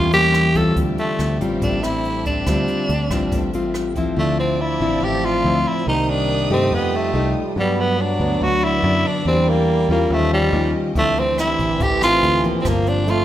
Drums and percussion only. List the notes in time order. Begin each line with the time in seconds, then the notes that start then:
0.12 closed hi-hat
0.34 cross-stick, closed hi-hat
0.55 kick, closed hi-hat
0.76 kick, closed hi-hat
0.98 closed hi-hat
1.19 cross-stick, closed hi-hat
1.41 closed hi-hat
1.62 kick, closed hi-hat
1.83 cross-stick, closed hi-hat
2.05 closed hi-hat
2.25 kick, closed hi-hat
2.47 kick, cross-stick, closed hi-hat
2.68 closed hi-hat
2.89 closed hi-hat
3.10 kick, cross-stick, closed hi-hat
3.32 kick, closed hi-hat
3.53 closed hi-hat
3.74 cross-stick, closed hi-hat
3.96 kick, closed hi-hat
10.96 kick, closed hi-hat
11.17 closed hi-hat
11.38 cross-stick, closed hi-hat
11.59 kick, closed hi-hat
11.80 kick, closed hi-hat
12.02 cross-stick, closed hi-hat
12.23 closed hi-hat
12.44 kick, closed hi-hat
12.65 kick, cross-stick, closed hi-hat
12.87 closed hi-hat
13.08 closed hi-hat